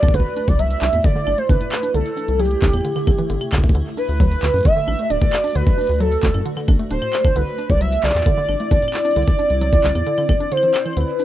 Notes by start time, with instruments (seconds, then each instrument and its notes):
Already playing: ambient pad A3 F#4 D5, soft synth lead D5
0.03 synth arpeggio sound D4, kick, closed hi-hat, claves
0.08 kick
0.14 analog synth bass C2, synth arpeggio sound D3, ambient pad E4, soft synth lead B4, kick, closed hi-hat
0.20 kick
0.37 synth arpeggio sound D4, shaker
0.48 analog synth bass C2, soft synth lead D5, kick, closed hi-hat
0.59 synth arpeggio sound F#3, soft synth lead E5, closed hi-hat
0.70 closed hi-hat, shaker
0.82 analog synth bass C2, synth arpeggio sound D4, clap
0.93 analog synth bass E2, synth arpeggio sound A2, closed hi-hat
1.04 synth arpeggio sound D3, soft synth lead D5, kick, closed hi-hat
1.15 synth arpeggio sound D3
1.27 analog synth bass G1, synth arpeggio sound D4, claves
1.38 synth arpeggio sound A3, soft synth lead C5, closed hi-hat
1.49 analog synth bass G1, synth arpeggio sound D4, soft synth lead B4, kick, closed hi-hat
1.61 synth arpeggio sound A2, closed hi-hat
1.72 clap, claves
1.83 synth arpeggio sound D4, closed hi-hat, shaker
1.94 analog synth bass C2, synth arpeggio sound D3, soft synth lead A4, ambient pad E5, closed hi-hat
2.06 closed hi-hat
2.17 synth arpeggio sound D4, shaker
2.28 analog synth bass C2, closed hi-hat
2.39 synth arpeggio sound F#3, soft synth lead G4, closed hi-hat
2.45 shaker
2.51 closed hi-hat
2.62 analog synth bass C2, synth arpeggio sound D4, kick, clap
2.73 analog synth bass E2, synth arpeggio sound A2, closed hi-hat, claves
2.77 claves
2.81 synth arpeggio sound D3, closed hi-hat, claves
2.85 claves
2.88 claves
2.92 synth arpeggio sound D3, claves
2.96 claves
3.07 analog synth bass G1, synth arpeggio sound D3, kick, claves
3.19 synth arpeggio sound E3, closed hi-hat
3.30 analog synth bass G1, synth arpeggio sound D3, closed hi-hat
3.41 synth arpeggio sound C3, closed hi-hat, claves
3.52 synth arpeggio sound D3, kick, clap, claves
3.58 kick
3.63 synth arpeggio sound A3, kick, closed hi-hat
3.69 kick
3.75 analog synth bass D2, synth arpeggio sound D3, ambient pad F#4 D5, closed hi-hat
3.97 synth arpeggio sound D4, soft synth lead B4, shaker
4.09 analog synth bass D2, closed hi-hat
4.20 synth arpeggio sound F#3, soft synth lead B4, kick, closed hi-hat
4.31 closed hi-hat, shaker
4.42 analog synth bass D2, synth arpeggio sound D3, clap
4.54 analog synth bass F#2, synth arpeggio sound A2, closed hi-hat
4.56 closed hi-hat
4.58 closed hi-hat
4.61 closed hi-hat
4.63 synth arpeggio sound D3, soft synth lead E5, closed hi-hat
4.65 kick, closed hi-hat
4.76 synth arpeggio sound D3
4.88 analog synth bass A1, synth arpeggio sound D4, claves
4.99 synth arpeggio sound A3, closed hi-hat
5.10 analog synth bass D1, synth arpeggio sound D4, soft synth lead D5, closed hi-hat
5.21 synth arpeggio sound A2, kick, closed hi-hat
5.33 clap, claves
5.44 synth arpeggio sound D4, closed hi-hat, shaker
5.47 shaker
5.50 shaker
5.53 analog synth bass D2, synth arpeggio sound D3, soft synth lead B4, closed hi-hat, shaker
5.55 shaker
5.58 shaker
5.61 shaker
5.64 kick, shaker
5.78 synth arpeggio sound D4, shaker
5.81 shaker
5.84 shaker
5.86 analog synth bass D2, closed hi-hat, shaker
5.91 closed hi-hat
5.94 closed hi-hat
5.96 closed hi-hat
5.98 synth arpeggio sound F#3, soft synth lead A4, closed hi-hat
6.00 closed hi-hat
6.12 closed hi-hat, shaker
6.23 analog synth bass D2, synth arpeggio sound D3, kick, clap
6.34 analog synth bass F#2, synth arpeggio sound A2, closed hi-hat, claves
6.46 synth arpeggio sound D3, closed hi-hat
6.57 synth arpeggio sound D3, claves
6.68 analog synth bass A1, synth arpeggio sound D4, kick, claves
6.79 synth arpeggio sound A3, closed hi-hat
6.91 analog synth bass D1, synth arpeggio sound D4, soft synth lead C5, closed hi-hat
7.02 synth arpeggio sound A2, closed hi-hat, claves
7.13 clap, claves
7.25 synth arpeggio sound D4, kick, claves
7.36 analog synth bass C2, synth arpeggio sound D3, ambient pad C4 E4, soft synth lead B4, closed hi-hat
7.58 synth arpeggio sound D4, shaker
7.70 analog synth bass C2, soft synth lead D5, kick, closed hi-hat
7.81 synth arpeggio sound F#3, soft synth lead E5, closed hi-hat
7.92 closed hi-hat, shaker
8.03 analog synth bass C2, synth arpeggio sound D3, soft synth lead D5, clap
8.09 clap
8.15 analog synth bass E2, synth arpeggio sound A2, clap, closed hi-hat
8.20 clap
8.26 synth arpeggio sound D3, kick, closed hi-hat
8.37 synth arpeggio sound D3
8.49 analog synth bass G1, synth arpeggio sound D4, claves
8.60 synth arpeggio sound A3, closed hi-hat
8.71 analog synth bass G1, synth arpeggio sound D4, kick, closed hi-hat
8.82 synth arpeggio sound A2, closed hi-hat
8.88 claves
8.94 clap
9.05 synth arpeggio sound D4, closed hi-hat, shaker
9.11 shaker
9.16 analog synth bass C2, synth arpeggio sound D3, closed hi-hat, shaker
9.22 shaker
9.28 kick, closed hi-hat
9.39 synth arpeggio sound D4, shaker
9.50 analog synth bass C2, closed hi-hat
9.61 synth arpeggio sound F#3, closed hi-hat
9.73 kick, closed hi-hat, shaker
9.84 analog synth bass C2, synth arpeggio sound D3, clap
9.95 analog synth bass E2, synth arpeggio sound A2, closed hi-hat, claves
10.07 synth arpeggio sound D3, closed hi-hat
10.18 synth arpeggio sound D3, closed hi-hat, claves
10.29 analog synth bass G1, synth arpeggio sound D3, kick, claves
10.40 synth arpeggio sound D4, closed hi-hat
10.52 synth arpeggio sound D3, soft synth lead C5, closed hi-hat
10.57 claves
10.63 synth arpeggio sound E3, closed hi-hat
10.74 clap, claves
10.86 synth arpeggio sound E3, closed hi-hat, claves
10.93 analog synth bass D2, synth arpeggio sound D3, ambient pad F#4, soft synth lead B4, closed hi-hat, claves
11.01 claves
11.19 synth arpeggio sound D4, shaker